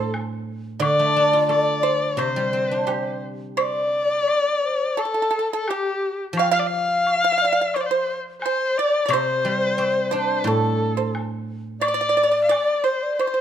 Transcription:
0.00 0.81 A2 medium
0.00 0.14 C4 soft
0.00 0.48 D4 soft
0.00 0.13 A4 medium
0.00 0.14 A4 medium
0.00 0.12 C5 medium
0.14 low woodblock soft
0.80 2.86 D3 medium
0.80 1.79 D5 medium
0.80 1.46 D5 loud
0.80 high woodblock medium
0.86 1.86 D5 loud
0.99 2.36 A3 soft
1.16 2.53 D4 soft
1.33 2.71 F4 soft
1.49 2.87 A4 soft
1.49 2.20 D5 medium
1.49 high woodblock soft
1.83 2.16 C5 medium
1.83 2.18 C5 medium
2.17 4.27 C3 medium
2.17 3.22 C5 medium
2.17 3.18 C5 medium
2.17 2.84 C5 medium
2.17 high woodblock soft
2.36 3.75 G3 soft
2.53 3.93 C4 soft
2.71 4.11 D4 soft
2.87 4.27 G4 soft
2.87 3.20 C5 medium
2.87 low woodblock soft
3.57 3.82 C5 medium
3.57 4.59 D5 medium
3.57 5.00 D5 medium
3.57 high woodblock medium
3.82 3.98 C#5 medium
3.98 4.94 D5 medium
4.28 high woodblock soft
4.64 5.00 C5 medium
4.97 5.04 A4 medium
4.97 5.50 A4 medium
4.97 5.59 A4 medium
4.97 high woodblock soft
5.05 5.12 A4 soft
5.14 5.21 A4 medium
5.22 5.28 A4 soft
5.31 5.36 A4 medium
5.39 5.44 A4 medium
5.52 5.70 A4 medium
5.52 5.68 A4 medium
5.59 5.69 A4 medium
5.67 6.19 G4 medium
5.67 6.20 G4 medium
5.67 6.17 G4 medium
5.67 low woodblock medium
6.33 8.41 F3 medium
6.37 6.43 F5 loud
6.37 6.50 F5 medium
6.37 high woodblock medium
6.42 6.53 G5 medium
6.51 7.20 F5 medium
6.51 7.43 F5 loud
6.51 6.61 F5 medium
6.59 6.68 D5 medium
6.66 7.77 F5 medium
7.07 high woodblock soft
7.24 7.31 F5 medium
7.32 7.36 F5 medium
7.38 7.44 F5 medium
7.42 7.78 D5 medium
7.42 7.51 F5 medium
7.53 7.60 F5 medium
7.61 7.68 F5 medium
7.74 7.82 C5 medium
7.74 7.88 C5 medium
7.74 7.83 C5 medium
7.74 high woodblock soft
7.80 7.87 D5 medium
7.80 7.93 D5 medium
7.86 8.15 C5 medium
7.91 8.16 C5 medium
7.91 8.18 C5 medium
8.41 8.79 C5 medium
8.41 low woodblock medium
8.46 8.76 C5 medium
8.77 9.14 D5 medium
8.77 9.03 D5 medium
9.03 9.13 D5 medium
9.03 9.12 D5 medium
9.08 10.46 C3 medium
9.08 10.50 C5 medium
9.08 10.14 C5 medium
9.08 high woodblock medium
9.13 10.10 C5 medium
9.45 10.81 G3 medium
9.78 11.14 C4 soft
9.78 high woodblock soft
10.11 11.48 D4 soft
10.11 10.44 C5 medium
10.16 10.49 C5 medium
10.44 12.49 A2 medium
10.44 11.15 A4 medium
10.44 10.94 A4 medium
10.44 high woodblock soft
10.48 11.15 A4 medium
10.97 11.13 C5 medium
11.15 low woodblock soft
11.80 12.87 D5 loud
11.80 11.87 D5 medium
11.80 12.39 D5 medium
11.80 high woodblock medium
11.88 11.93 D5 medium
11.94 12.00 D5 medium
12.01 12.08 D5 medium
12.09 12.16 D5 medium
12.17 12.22 D5 medium
12.23 12.30 D5 medium
12.31 12.39 D5 medium
12.43 12.50 F5 medium
12.48 12.85 D5 medium
12.48 12.82 D5 medium
12.48 high woodblock soft
12.48 low woodblock soft
12.84 13.16 C5 medium
12.84 13.17 C5 medium
12.84 13.04 C5 medium
13.03 13.21 D5 medium
13.16 13.41 C5 medium
13.16 13.26 C5 medium
13.20 high woodblock soft
13.27 13.33 C5 soft
13.34 13.41 C5 soft

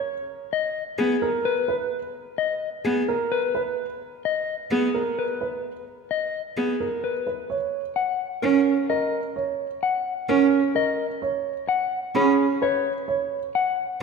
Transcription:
0.00 0.13 C#5 medium
0.53 0.83 D#5 medium
0.98 1.16 B3 medium
0.98 1.29 G#4 medium
1.22 1.52 A#4 medium
1.45 1.76 B4 medium
1.68 1.99 B4 medium
2.38 2.69 D#5 medium
2.85 3.02 B3 medium
2.85 3.15 G#4 medium
3.08 3.39 A#4 medium
3.32 3.62 B4 medium
3.55 3.85 B4 medium
4.25 4.55 D#5 medium
4.71 4.88 B3 medium
4.71 5.02 G#4 medium
4.94 5.25 A#4 medium
5.19 5.48 B4 medium
5.41 5.71 B4 soft
6.11 6.41 D#5 soft
6.57 6.74 B3 soft
6.57 6.87 G#4 soft
6.80 7.11 A#4 soft
7.04 7.34 B4 soft
7.27 7.57 B4 soft
7.50 7.80 C#5 soft
7.96 8.27 F#5 soft
8.42 8.60 C#4 soft
8.42 8.73 C#4 medium
8.42 8.73 A#4 medium
8.89 9.20 A#4 medium
8.89 9.20 D#5 medium
9.36 9.66 C#5 soft
9.83 10.13 F#5 soft
10.29 10.59 C#4 medium
10.29 10.46 C#4 medium
10.29 10.59 A#4 medium
10.75 11.06 A#4 soft
10.75 11.06 D#5 medium
11.22 11.52 C#5 medium
11.69 11.99 F#5 medium
12.15 12.45 C#4 medium
12.15 12.33 C#4 medium
12.15 12.46 G#4 medium
12.15 12.45 B5 medium
12.62 12.92 B4 medium
12.62 12.92 C#5 medium
13.08 13.38 C#5 medium
13.55 13.85 F#5 medium

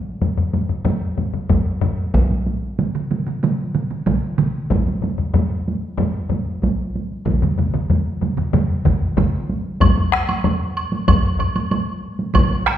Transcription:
0.05 taiko high soft
0.21 taiko low-mid medium
0.21 taiko high soft
0.37 taiko low-mid medium
0.37 taiko high soft
0.53 taiko low-mid medium
0.53 taiko high soft
0.69 taiko low-mid medium
0.69 taiko high soft
0.85 taiko low-mid medium
0.85 taiko high medium
1.02 taiko high soft
1.17 taiko low-mid medium
1.17 taiko high soft
1.33 taiko low-mid medium
1.33 taiko high soft
1.49 taiko medium
1.49 taiko low-mid medium
1.49 taiko high medium
1.67 taiko high soft
1.81 taiko low-mid medium
1.81 taiko high soft
1.99 taiko high soft
2.14 taiko loud
2.14 taiko high soft
2.31 taiko high soft
2.47 taiko high soft
2.63 taiko high soft
2.79 taiko mid medium
2.79 taiko high soft
2.95 taiko mid medium
2.95 taiko high soft
3.11 taiko mid medium
3.11 taiko high soft
3.27 taiko mid medium
3.27 taiko high soft
3.43 taiko mid medium
3.43 taiko high medium
3.60 taiko high soft
3.75 taiko mid medium
3.75 taiko high soft
3.90 taiko mid medium
3.90 taiko high soft
4.06 taiko medium
4.06 taiko mid medium
4.06 taiko high medium
4.23 taiko high soft
4.38 taiko mid medium
4.38 taiko high soft
4.56 taiko high soft
4.70 taiko medium
4.70 taiko low-mid medium
4.70 taiko high medium
4.88 taiko high soft
5.02 taiko low-mid medium
5.02 taiko high medium
5.18 taiko low-mid medium
5.18 taiko high soft
5.34 taiko low-mid medium
5.34 taiko high medium
5.52 taiko high soft
5.68 taiko high soft
5.84 taiko high soft
5.98 taiko low-mid medium
5.98 taiko high medium
6.16 taiko high soft
6.30 taiko low-mid medium
6.30 taiko high medium
6.48 taiko high soft
6.62 taiko medium
6.62 taiko high medium
6.80 taiko high soft
6.95 taiko high soft
7.12 taiko high soft
7.26 taiko medium
7.26 taiko low-mid medium
7.26 taiko mid medium
7.26 taiko high medium
7.42 taiko low-mid medium
7.42 taiko mid medium
7.42 taiko high soft
7.58 taiko low-mid medium
7.58 taiko mid medium
7.58 taiko high soft
7.74 taiko low-mid medium
7.74 taiko mid medium
7.74 taiko high soft
7.90 taiko low-mid medium
7.90 taiko mid medium
7.90 taiko high medium
8.07 taiko high soft
8.21 taiko low-mid medium
8.21 taiko mid medium
8.21 taiko high soft
8.38 taiko low-mid medium
8.38 taiko mid medium
8.38 taiko high soft
8.53 taiko low-mid medium
8.53 taiko mid medium
8.53 taiko high medium
8.70 taiko high soft
8.85 taiko medium
8.85 taiko low-mid medium
8.85 taiko mid medium
8.85 taiko high soft
9.03 taiko high soft
9.17 taiko medium
9.17 taiko low-mid medium
9.17 taiko mid medium
9.17 taiko high medium
9.34 taiko high soft
9.49 taiko high soft
9.66 taiko high soft
9.81 taiko medium
9.81 taiko low-mid medium
9.81 taiko high medium
9.81 high woodblock medium
9.98 taiko high soft
10.12 taiko rim medium
10.29 taiko high soft
10.29 high woodblock soft
10.44 taiko low-mid medium
10.44 taiko high medium
10.44 high woodblock soft
10.77 high woodblock soft
10.92 taiko high medium
11.08 taiko medium
11.08 taiko low-mid medium
11.08 taiko high medium
11.08 high woodblock medium
11.39 taiko low-mid medium
11.39 high woodblock soft
11.56 taiko high medium
11.56 high woodblock soft
11.71 taiko high medium
11.71 high woodblock soft
12.19 taiko high soft
12.35 taiko loud
12.35 taiko mid medium
12.35 taiko high medium
12.35 high woodblock medium
12.51 taiko high soft
12.67 taiko rim medium

